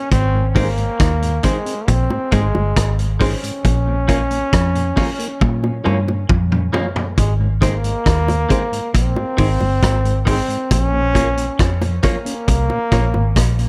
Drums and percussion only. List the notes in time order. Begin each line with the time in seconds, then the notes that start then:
0.12 kick, closed hi-hat
0.56 kick, open hi-hat, high bongo
0.78 closed hi-hat
1.00 kick, cross-stick, closed hi-hat
1.22 closed hi-hat
1.43 kick, closed hi-hat, low bongo
1.66 closed hi-hat
1.88 kick, closed hi-hat
2.10 high bongo
2.32 kick, closed hi-hat
2.55 high bongo
2.77 kick, cross-stick, closed hi-hat
2.99 closed hi-hat
3.20 kick, open hi-hat, high bongo, low bongo
3.44 closed hi-hat
3.65 kick, closed hi-hat
4.09 kick, closed hi-hat, high bongo
4.31 closed hi-hat
4.53 kick, cross-stick, closed hi-hat
4.75 closed hi-hat
4.97 kick, open hi-hat, low bongo
5.20 closed hi-hat
5.41 kick, high tom
5.64 high bongo
5.86 mid tom
6.08 high bongo
6.29 kick, mid tom
6.52 mid tom
6.74 floor tom, high bongo, low bongo
6.96 floor tom
7.18 kick, closed hi-hat
7.62 kick, closed hi-hat, high bongo
7.84 closed hi-hat
8.06 kick, cross-stick, closed hi-hat
8.28 closed hi-hat, high bongo
8.50 kick, closed hi-hat, low bongo
8.73 closed hi-hat
8.95 kick, closed hi-hat
9.16 high bongo
9.38 kick, open hi-hat, high bongo
9.61 high bongo
9.83 kick, cross-stick, closed hi-hat
10.05 closed hi-hat
10.27 kick, open hi-hat, high bongo, low bongo
10.50 closed hi-hat
10.71 kick, closed hi-hat
11.15 kick, closed hi-hat, high bongo
11.37 closed hi-hat
11.59 kick, cross-stick, closed hi-hat
11.82 closed hi-hat, high bongo
12.03 kick, closed hi-hat, low bongo
12.26 closed hi-hat
12.48 kick, closed hi-hat
12.70 high bongo
12.92 kick, cross-stick, closed hi-hat, high bongo
13.14 high bongo
13.36 kick, cross-stick, closed hi-hat
13.59 closed hi-hat